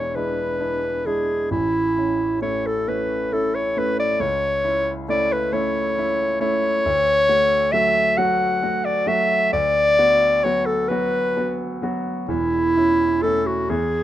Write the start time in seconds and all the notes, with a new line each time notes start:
Already playing: E1 E2 G#3 D4 E4 C#5
0.15 G#3 D4 E4 B4
0.60 D4 E4
1.06 G#3 D4 E4 G#4
1.51 A1 E4
1.97 C#4 E4
2.41 A3 C#4 E4 C#5
2.67 A4
2.88 A3 C#4 E4 B4
3.33 C#4 E4 A4
3.55 C#5
3.76 A3 C#4 E4 B4
4.00 D5
4.20 C#2 C#5
4.64 C#4 E4
5.08 A3 C#4 E4 D5
5.33 B4
5.52 A3 C#4 E4 C#5
5.98 C#4 E4
6.40 A3 C#4 E4 C#5
6.85 D2
7.29 A3 F#4
7.72 F#3 A3 F#4 E5
8.17 F#3 A3 F#4 F#5
8.62 A3 F#4
8.85 D5
9.06 F#3 A3 F#4 E5
9.53 D2 D5
9.98 B3 F#4
10.44 F#3 B3 F#4 C#5
10.66 A4
10.88 F#3 B3 F#4 B4
11.37 B3 F#4
11.82 F#3 B3 F#4
12.28 E1 E2 E4
12.76 C#4 E4
13.22 A3 C#4 E4 A4
13.46 F#4
13.69 E2 G#4